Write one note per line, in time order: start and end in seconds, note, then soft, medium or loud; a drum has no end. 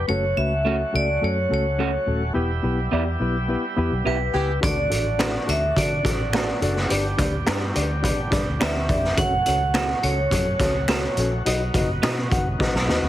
0.00 0.11 B4 medium
0.08 0.31 F#1 loud
0.08 2.33 F#3 medium
0.08 0.23 A3 medium
0.08 2.33 A3 medium
0.08 2.33 C#4 medium
0.08 0.23 C#4 medium
0.08 2.33 F#4 medium
0.08 0.24 F#4 medium
0.08 0.24 A4 loud
0.08 0.38 C#5 medium
0.37 0.83 C#2 medium
0.37 0.51 A3 medium
0.37 0.52 C#4 medium
0.37 0.52 F#4 medium
0.37 0.52 B4 medium
0.37 0.96 E5 loud
0.65 0.80 A3 medium
0.65 0.75 A3 medium
0.65 0.80 C#4 medium
0.65 0.76 C#4 medium
0.65 0.80 F#4 medium
0.65 0.76 F#4 medium
0.65 0.81 A4 medium
0.92 1.17 C#2 medium
0.92 1.08 A3 medium
0.92 1.08 C#4 medium
0.92 1.08 F#4 medium
0.92 1.08 A4 medium
0.92 1.24 D5 loud
1.21 1.45 F#2 medium
1.21 1.36 A3 medium
1.21 1.37 C#4 medium
1.21 1.37 F#4 medium
1.21 1.37 A4 medium
1.21 1.52 C#5 medium
1.49 1.96 C#2 medium
1.49 1.65 A3 medium
1.49 1.65 C#4 medium
1.49 1.65 F#4 medium
1.49 1.66 A4 medium
1.54 2.05 C#5 medium
1.78 1.93 A3 medium
1.78 1.89 A3 medium
1.78 1.93 C#4 medium
1.78 1.90 C#4 medium
1.78 1.94 F#4 medium
1.78 1.90 F#4 medium
1.78 1.94 A4 medium
2.06 2.30 D#1 medium
2.06 2.21 A3 medium
2.06 2.22 C#4 medium
2.06 2.22 F#4 medium
2.06 2.22 A4 medium
2.34 2.58 E1 medium
2.34 4.60 G3 medium
2.34 2.49 B3 loud
2.34 4.60 B3 medium
2.34 2.50 E4 medium
2.34 4.60 E4 medium
2.34 4.60 G4 medium
2.34 2.50 G4 loud
2.34 2.50 B4 loud
2.63 2.86 B1 medium
2.63 2.78 B3 medium
2.63 2.78 E4 medium
2.63 2.79 G4 medium
2.63 2.79 B4 medium
2.91 3.15 E2 medium
2.91 3.07 B3 medium
2.91 3.02 B3 medium
2.91 3.07 E4 medium
2.91 3.03 E4 medium
2.91 3.07 G4 medium
2.91 3.03 G4 medium
2.91 3.08 D5 loud
3.20 3.54 B1 medium
3.20 3.35 B3 medium
3.20 3.36 E4 medium
3.20 3.36 G4 medium
3.20 3.36 B4 medium
3.48 3.63 B3 medium
3.48 3.64 E4 medium
3.48 3.64 G4 medium
3.48 3.64 B4 loud
3.77 3.89 E2 medium
3.77 3.92 B3 loud
3.77 3.92 E4 loud
3.77 3.93 G4 loud
3.77 3.93 B4 loud
3.91 4.03 B1 medium
4.05 4.29 B1 medium
4.05 4.18 E3 medium
4.05 4.20 B3 medium
4.05 4.16 B3 medium
4.05 4.18 B3 medium
4.05 4.20 E4 medium
4.05 4.16 E4 medium
4.05 4.21 G4 medium
4.05 4.19 G4 medium
4.05 4.17 G4 medium
4.05 4.59 B4 medium
4.05 4.21 B4 loud
4.33 4.57 C#2 medium
4.33 4.52 E3 loud
4.33 4.52 B3 loud
4.33 4.49 B3 medium
4.33 4.49 E4 medium
4.33 4.52 G4 loud
4.33 4.49 G4 medium
4.33 4.50 B4 medium
4.61 4.86 D2 medium
4.61 6.88 F#3 medium
4.61 6.88 A3 medium
4.61 4.76 D4 medium
4.61 9.14 D4 medium
4.61 4.77 F#4 medium
4.61 6.88 F#4 medium
4.61 4.77 A4 medium
4.61 4.77 D5 loud
4.61 5.51 D5 medium
4.61 kick loud
4.61 closed hi-hat loud
4.90 5.37 A1 medium
4.90 5.05 D4 medium
4.90 5.05 F#4 medium
4.90 5.06 A4 medium
4.90 5.06 D5 medium
4.90 closed hi-hat medium
5.18 5.30 A3 medium
5.18 5.34 D4 medium
5.18 5.30 D4 medium
5.18 5.34 F#4 medium
5.18 5.30 F#4 medium
5.18 5.34 A4 medium
5.18 5.34 D5 medium
5.18 finger snap medium
5.18 snare loud
5.18 closed hi-hat medium
5.46 5.71 D2 medium
5.46 5.62 D4 medium
5.46 5.62 F#4 medium
5.46 5.62 A4 medium
5.46 5.63 D5 medium
5.46 closed hi-hat medium
5.50 5.78 E5 loud
5.76 5.99 D3 medium
5.76 5.91 D4 medium
5.76 5.91 F#4 medium
5.76 5.91 A4 medium
5.76 5.92 D5 medium
5.76 6.59 D5 medium
5.76 kick medium
5.76 closed hi-hat loud
6.03 6.50 A1 medium
6.03 6.19 D4 medium
6.03 6.19 F#4 medium
6.03 6.20 A4 medium
6.03 6.20 D5 loud
6.03 kick medium
6.03 snare soft
6.03 closed hi-hat medium
6.33 6.43 A3 medium
6.33 6.48 D4 medium
6.33 6.44 D4 medium
6.33 6.48 F#4 medium
6.33 6.44 F#4 medium
6.33 6.48 A4 medium
6.33 6.49 D5 loud
6.33 finger snap medium
6.33 snare loud
6.33 closed hi-hat medium
6.61 6.84 F#1 medium
6.61 6.76 D4 medium
6.61 6.76 F#4 medium
6.61 6.77 A4 medium
6.61 6.77 D5 loud
6.61 closed hi-hat medium
6.76 snare soft
6.89 7.13 G1 medium
6.89 9.15 G3 medium
6.89 9.15 B3 medium
6.89 7.04 D4 loud
6.89 9.15 G4 medium
6.89 7.05 G4 loud
6.89 7.05 B4 loud
6.89 7.05 D5 loud
6.89 closed hi-hat loud
7.17 7.41 D2 medium
7.17 7.33 D4 medium
7.17 7.33 G4 medium
7.17 7.33 B4 medium
7.17 7.34 D5 medium
7.17 kick medium
7.17 closed hi-hat medium
7.46 7.70 G2 loud
7.46 7.57 B3 medium
7.46 7.61 D4 medium
7.46 7.58 D4 medium
7.46 7.61 G4 medium
7.46 7.58 G4 medium
7.46 7.62 B4 medium
7.46 7.62 D5 loud
7.46 finger snap medium
7.46 snare loud
7.46 closed hi-hat medium
7.74 8.10 D2 medium
7.74 7.89 D4 medium
7.74 7.90 G4 medium
7.74 7.90 B4 medium
7.74 7.91 D5 loud
7.74 closed hi-hat medium
8.02 8.18 D4 medium
8.02 8.18 G4 medium
8.02 8.19 B4 medium
8.02 8.19 D5 loud
8.02 kick medium
8.02 closed hi-hat medium
8.31 8.43 G2 medium
8.31 8.46 D4 loud
8.31 8.47 G4 medium
8.31 8.47 B4 loud
8.31 8.47 D5 loud
8.31 kick loud
8.31 snare soft
8.31 closed hi-hat medium
8.47 8.58 D2 medium
8.59 8.91 D2 medium
8.59 8.71 B3 medium
8.59 8.75 D4 medium
8.59 8.71 D4 medium
8.59 8.75 G4 medium
8.59 8.72 G4 medium
8.59 8.75 B4 medium
8.59 8.76 D5 medium
8.59 9.20 E5 loud
8.59 finger snap loud
8.59 snare loud
8.59 closed hi-hat medium
8.88 9.12 F1 medium
8.88 9.04 D4 medium
8.88 9.04 G4 medium
8.88 9.04 B4 medium
8.88 9.05 D5 medium
8.88 kick medium
8.88 closed hi-hat medium
9.04 snare soft
9.16 9.40 F#1 loud
9.16 13.09 F#3 medium
9.16 11.43 A3 medium
9.16 11.43 C#4 medium
9.16 9.32 C#4 medium
9.16 13.09 F#4 medium
9.16 9.32 F#4 medium
9.16 9.33 A4 medium
9.16 9.33 C#5 loud
9.16 9.45 F#5 loud
9.16 kick loud
9.16 closed hi-hat loud
9.46 9.92 C#2 medium
9.46 9.61 C#4 medium
9.46 9.61 F#4 medium
9.46 9.62 A4 medium
9.46 9.62 C#5 medium
9.46 10.05 F#5 loud
9.46 closed hi-hat medium
9.74 9.85 A3 medium
9.74 9.89 C#4 medium
9.74 9.85 C#4 medium
9.74 9.89 F#4 medium
9.74 9.85 F#4 medium
9.74 9.90 A4 medium
9.74 9.90 C#5 medium
9.74 finger snap medium
9.74 snare loud
9.74 closed hi-hat medium
10.02 10.26 C#2 medium
10.02 10.18 C#4 medium
10.02 10.18 F#4 medium
10.02 10.18 A4 medium
10.02 11.13 C#5 medium
10.02 10.18 C#5 medium
10.02 closed hi-hat medium
10.31 10.54 F#2 loud
10.31 10.46 C#4 medium
10.31 10.46 F#4 medium
10.31 10.46 A4 medium
10.31 10.47 C#5 medium
10.31 kick medium
10.31 closed hi-hat loud
10.59 11.06 C#2 loud
10.59 10.74 C#4 loud
10.59 10.75 F#4 medium
10.59 10.75 A4 medium
10.59 10.75 C#5 loud
10.59 kick medium
10.59 snare soft
10.59 closed hi-hat medium
10.88 10.99 A3 medium
10.88 11.03 C#4 loud
10.88 10.99 C#4 medium
10.88 11.03 F#4 medium
10.88 10.99 F#4 medium
10.88 11.04 A4 loud
10.88 11.04 B4 loud
10.88 finger snap medium
10.88 snare loud
10.88 closed hi-hat medium
11.17 11.40 A#1 loud
11.17 11.32 C#4 medium
11.17 11.32 F#4 medium
11.17 11.33 A4 medium
11.17 11.33 C#5 medium
11.17 closed hi-hat medium
11.46 11.69 B1 loud
11.46 13.09 B3 medium
11.46 11.60 D#4 loud
11.46 13.09 D#4 medium
11.46 11.61 F#4 loud
11.46 11.61 B4 loud
11.46 11.61 D#5 loud
11.46 closed hi-hat loud
11.73 11.97 F#1 medium
11.73 11.89 D#4 medium
11.73 11.89 F#4 medium
11.73 11.89 B4 medium
11.73 11.90 D#5 medium
11.73 kick medium
11.73 closed hi-hat medium
12.02 12.26 B2 loud
12.02 12.12 B3 medium
12.02 12.17 D#4 medium
12.02 12.13 D#4 medium
12.02 12.18 F#4 medium
12.02 12.13 F#4 medium
12.02 12.18 B4 medium
12.02 12.18 D#5 medium
12.02 finger snap loud
12.02 snare loud
12.02 closed hi-hat medium
12.31 12.54 F#1 medium
12.31 12.46 D#4 medium
12.31 12.46 F#4 medium
12.31 12.46 B4 medium
12.31 12.47 F#5 medium
12.31 kick loud
12.31 closed hi-hat medium
12.59 12.74 D#4 medium
12.59 12.74 F#4 medium
12.59 12.75 B4 medium
12.59 12.75 D#5 loud
12.59 kick medium
12.59 snare medium
12.74 12.86 B1 medium
12.74 snare medium
12.87 13.00 D#2 medium
12.87 13.02 D#4 loud
12.87 13.03 F#4 loud
12.87 13.03 B4 loud
12.87 13.04 D#5 loud
12.87 snare medium
13.02 13.09 D#2 medium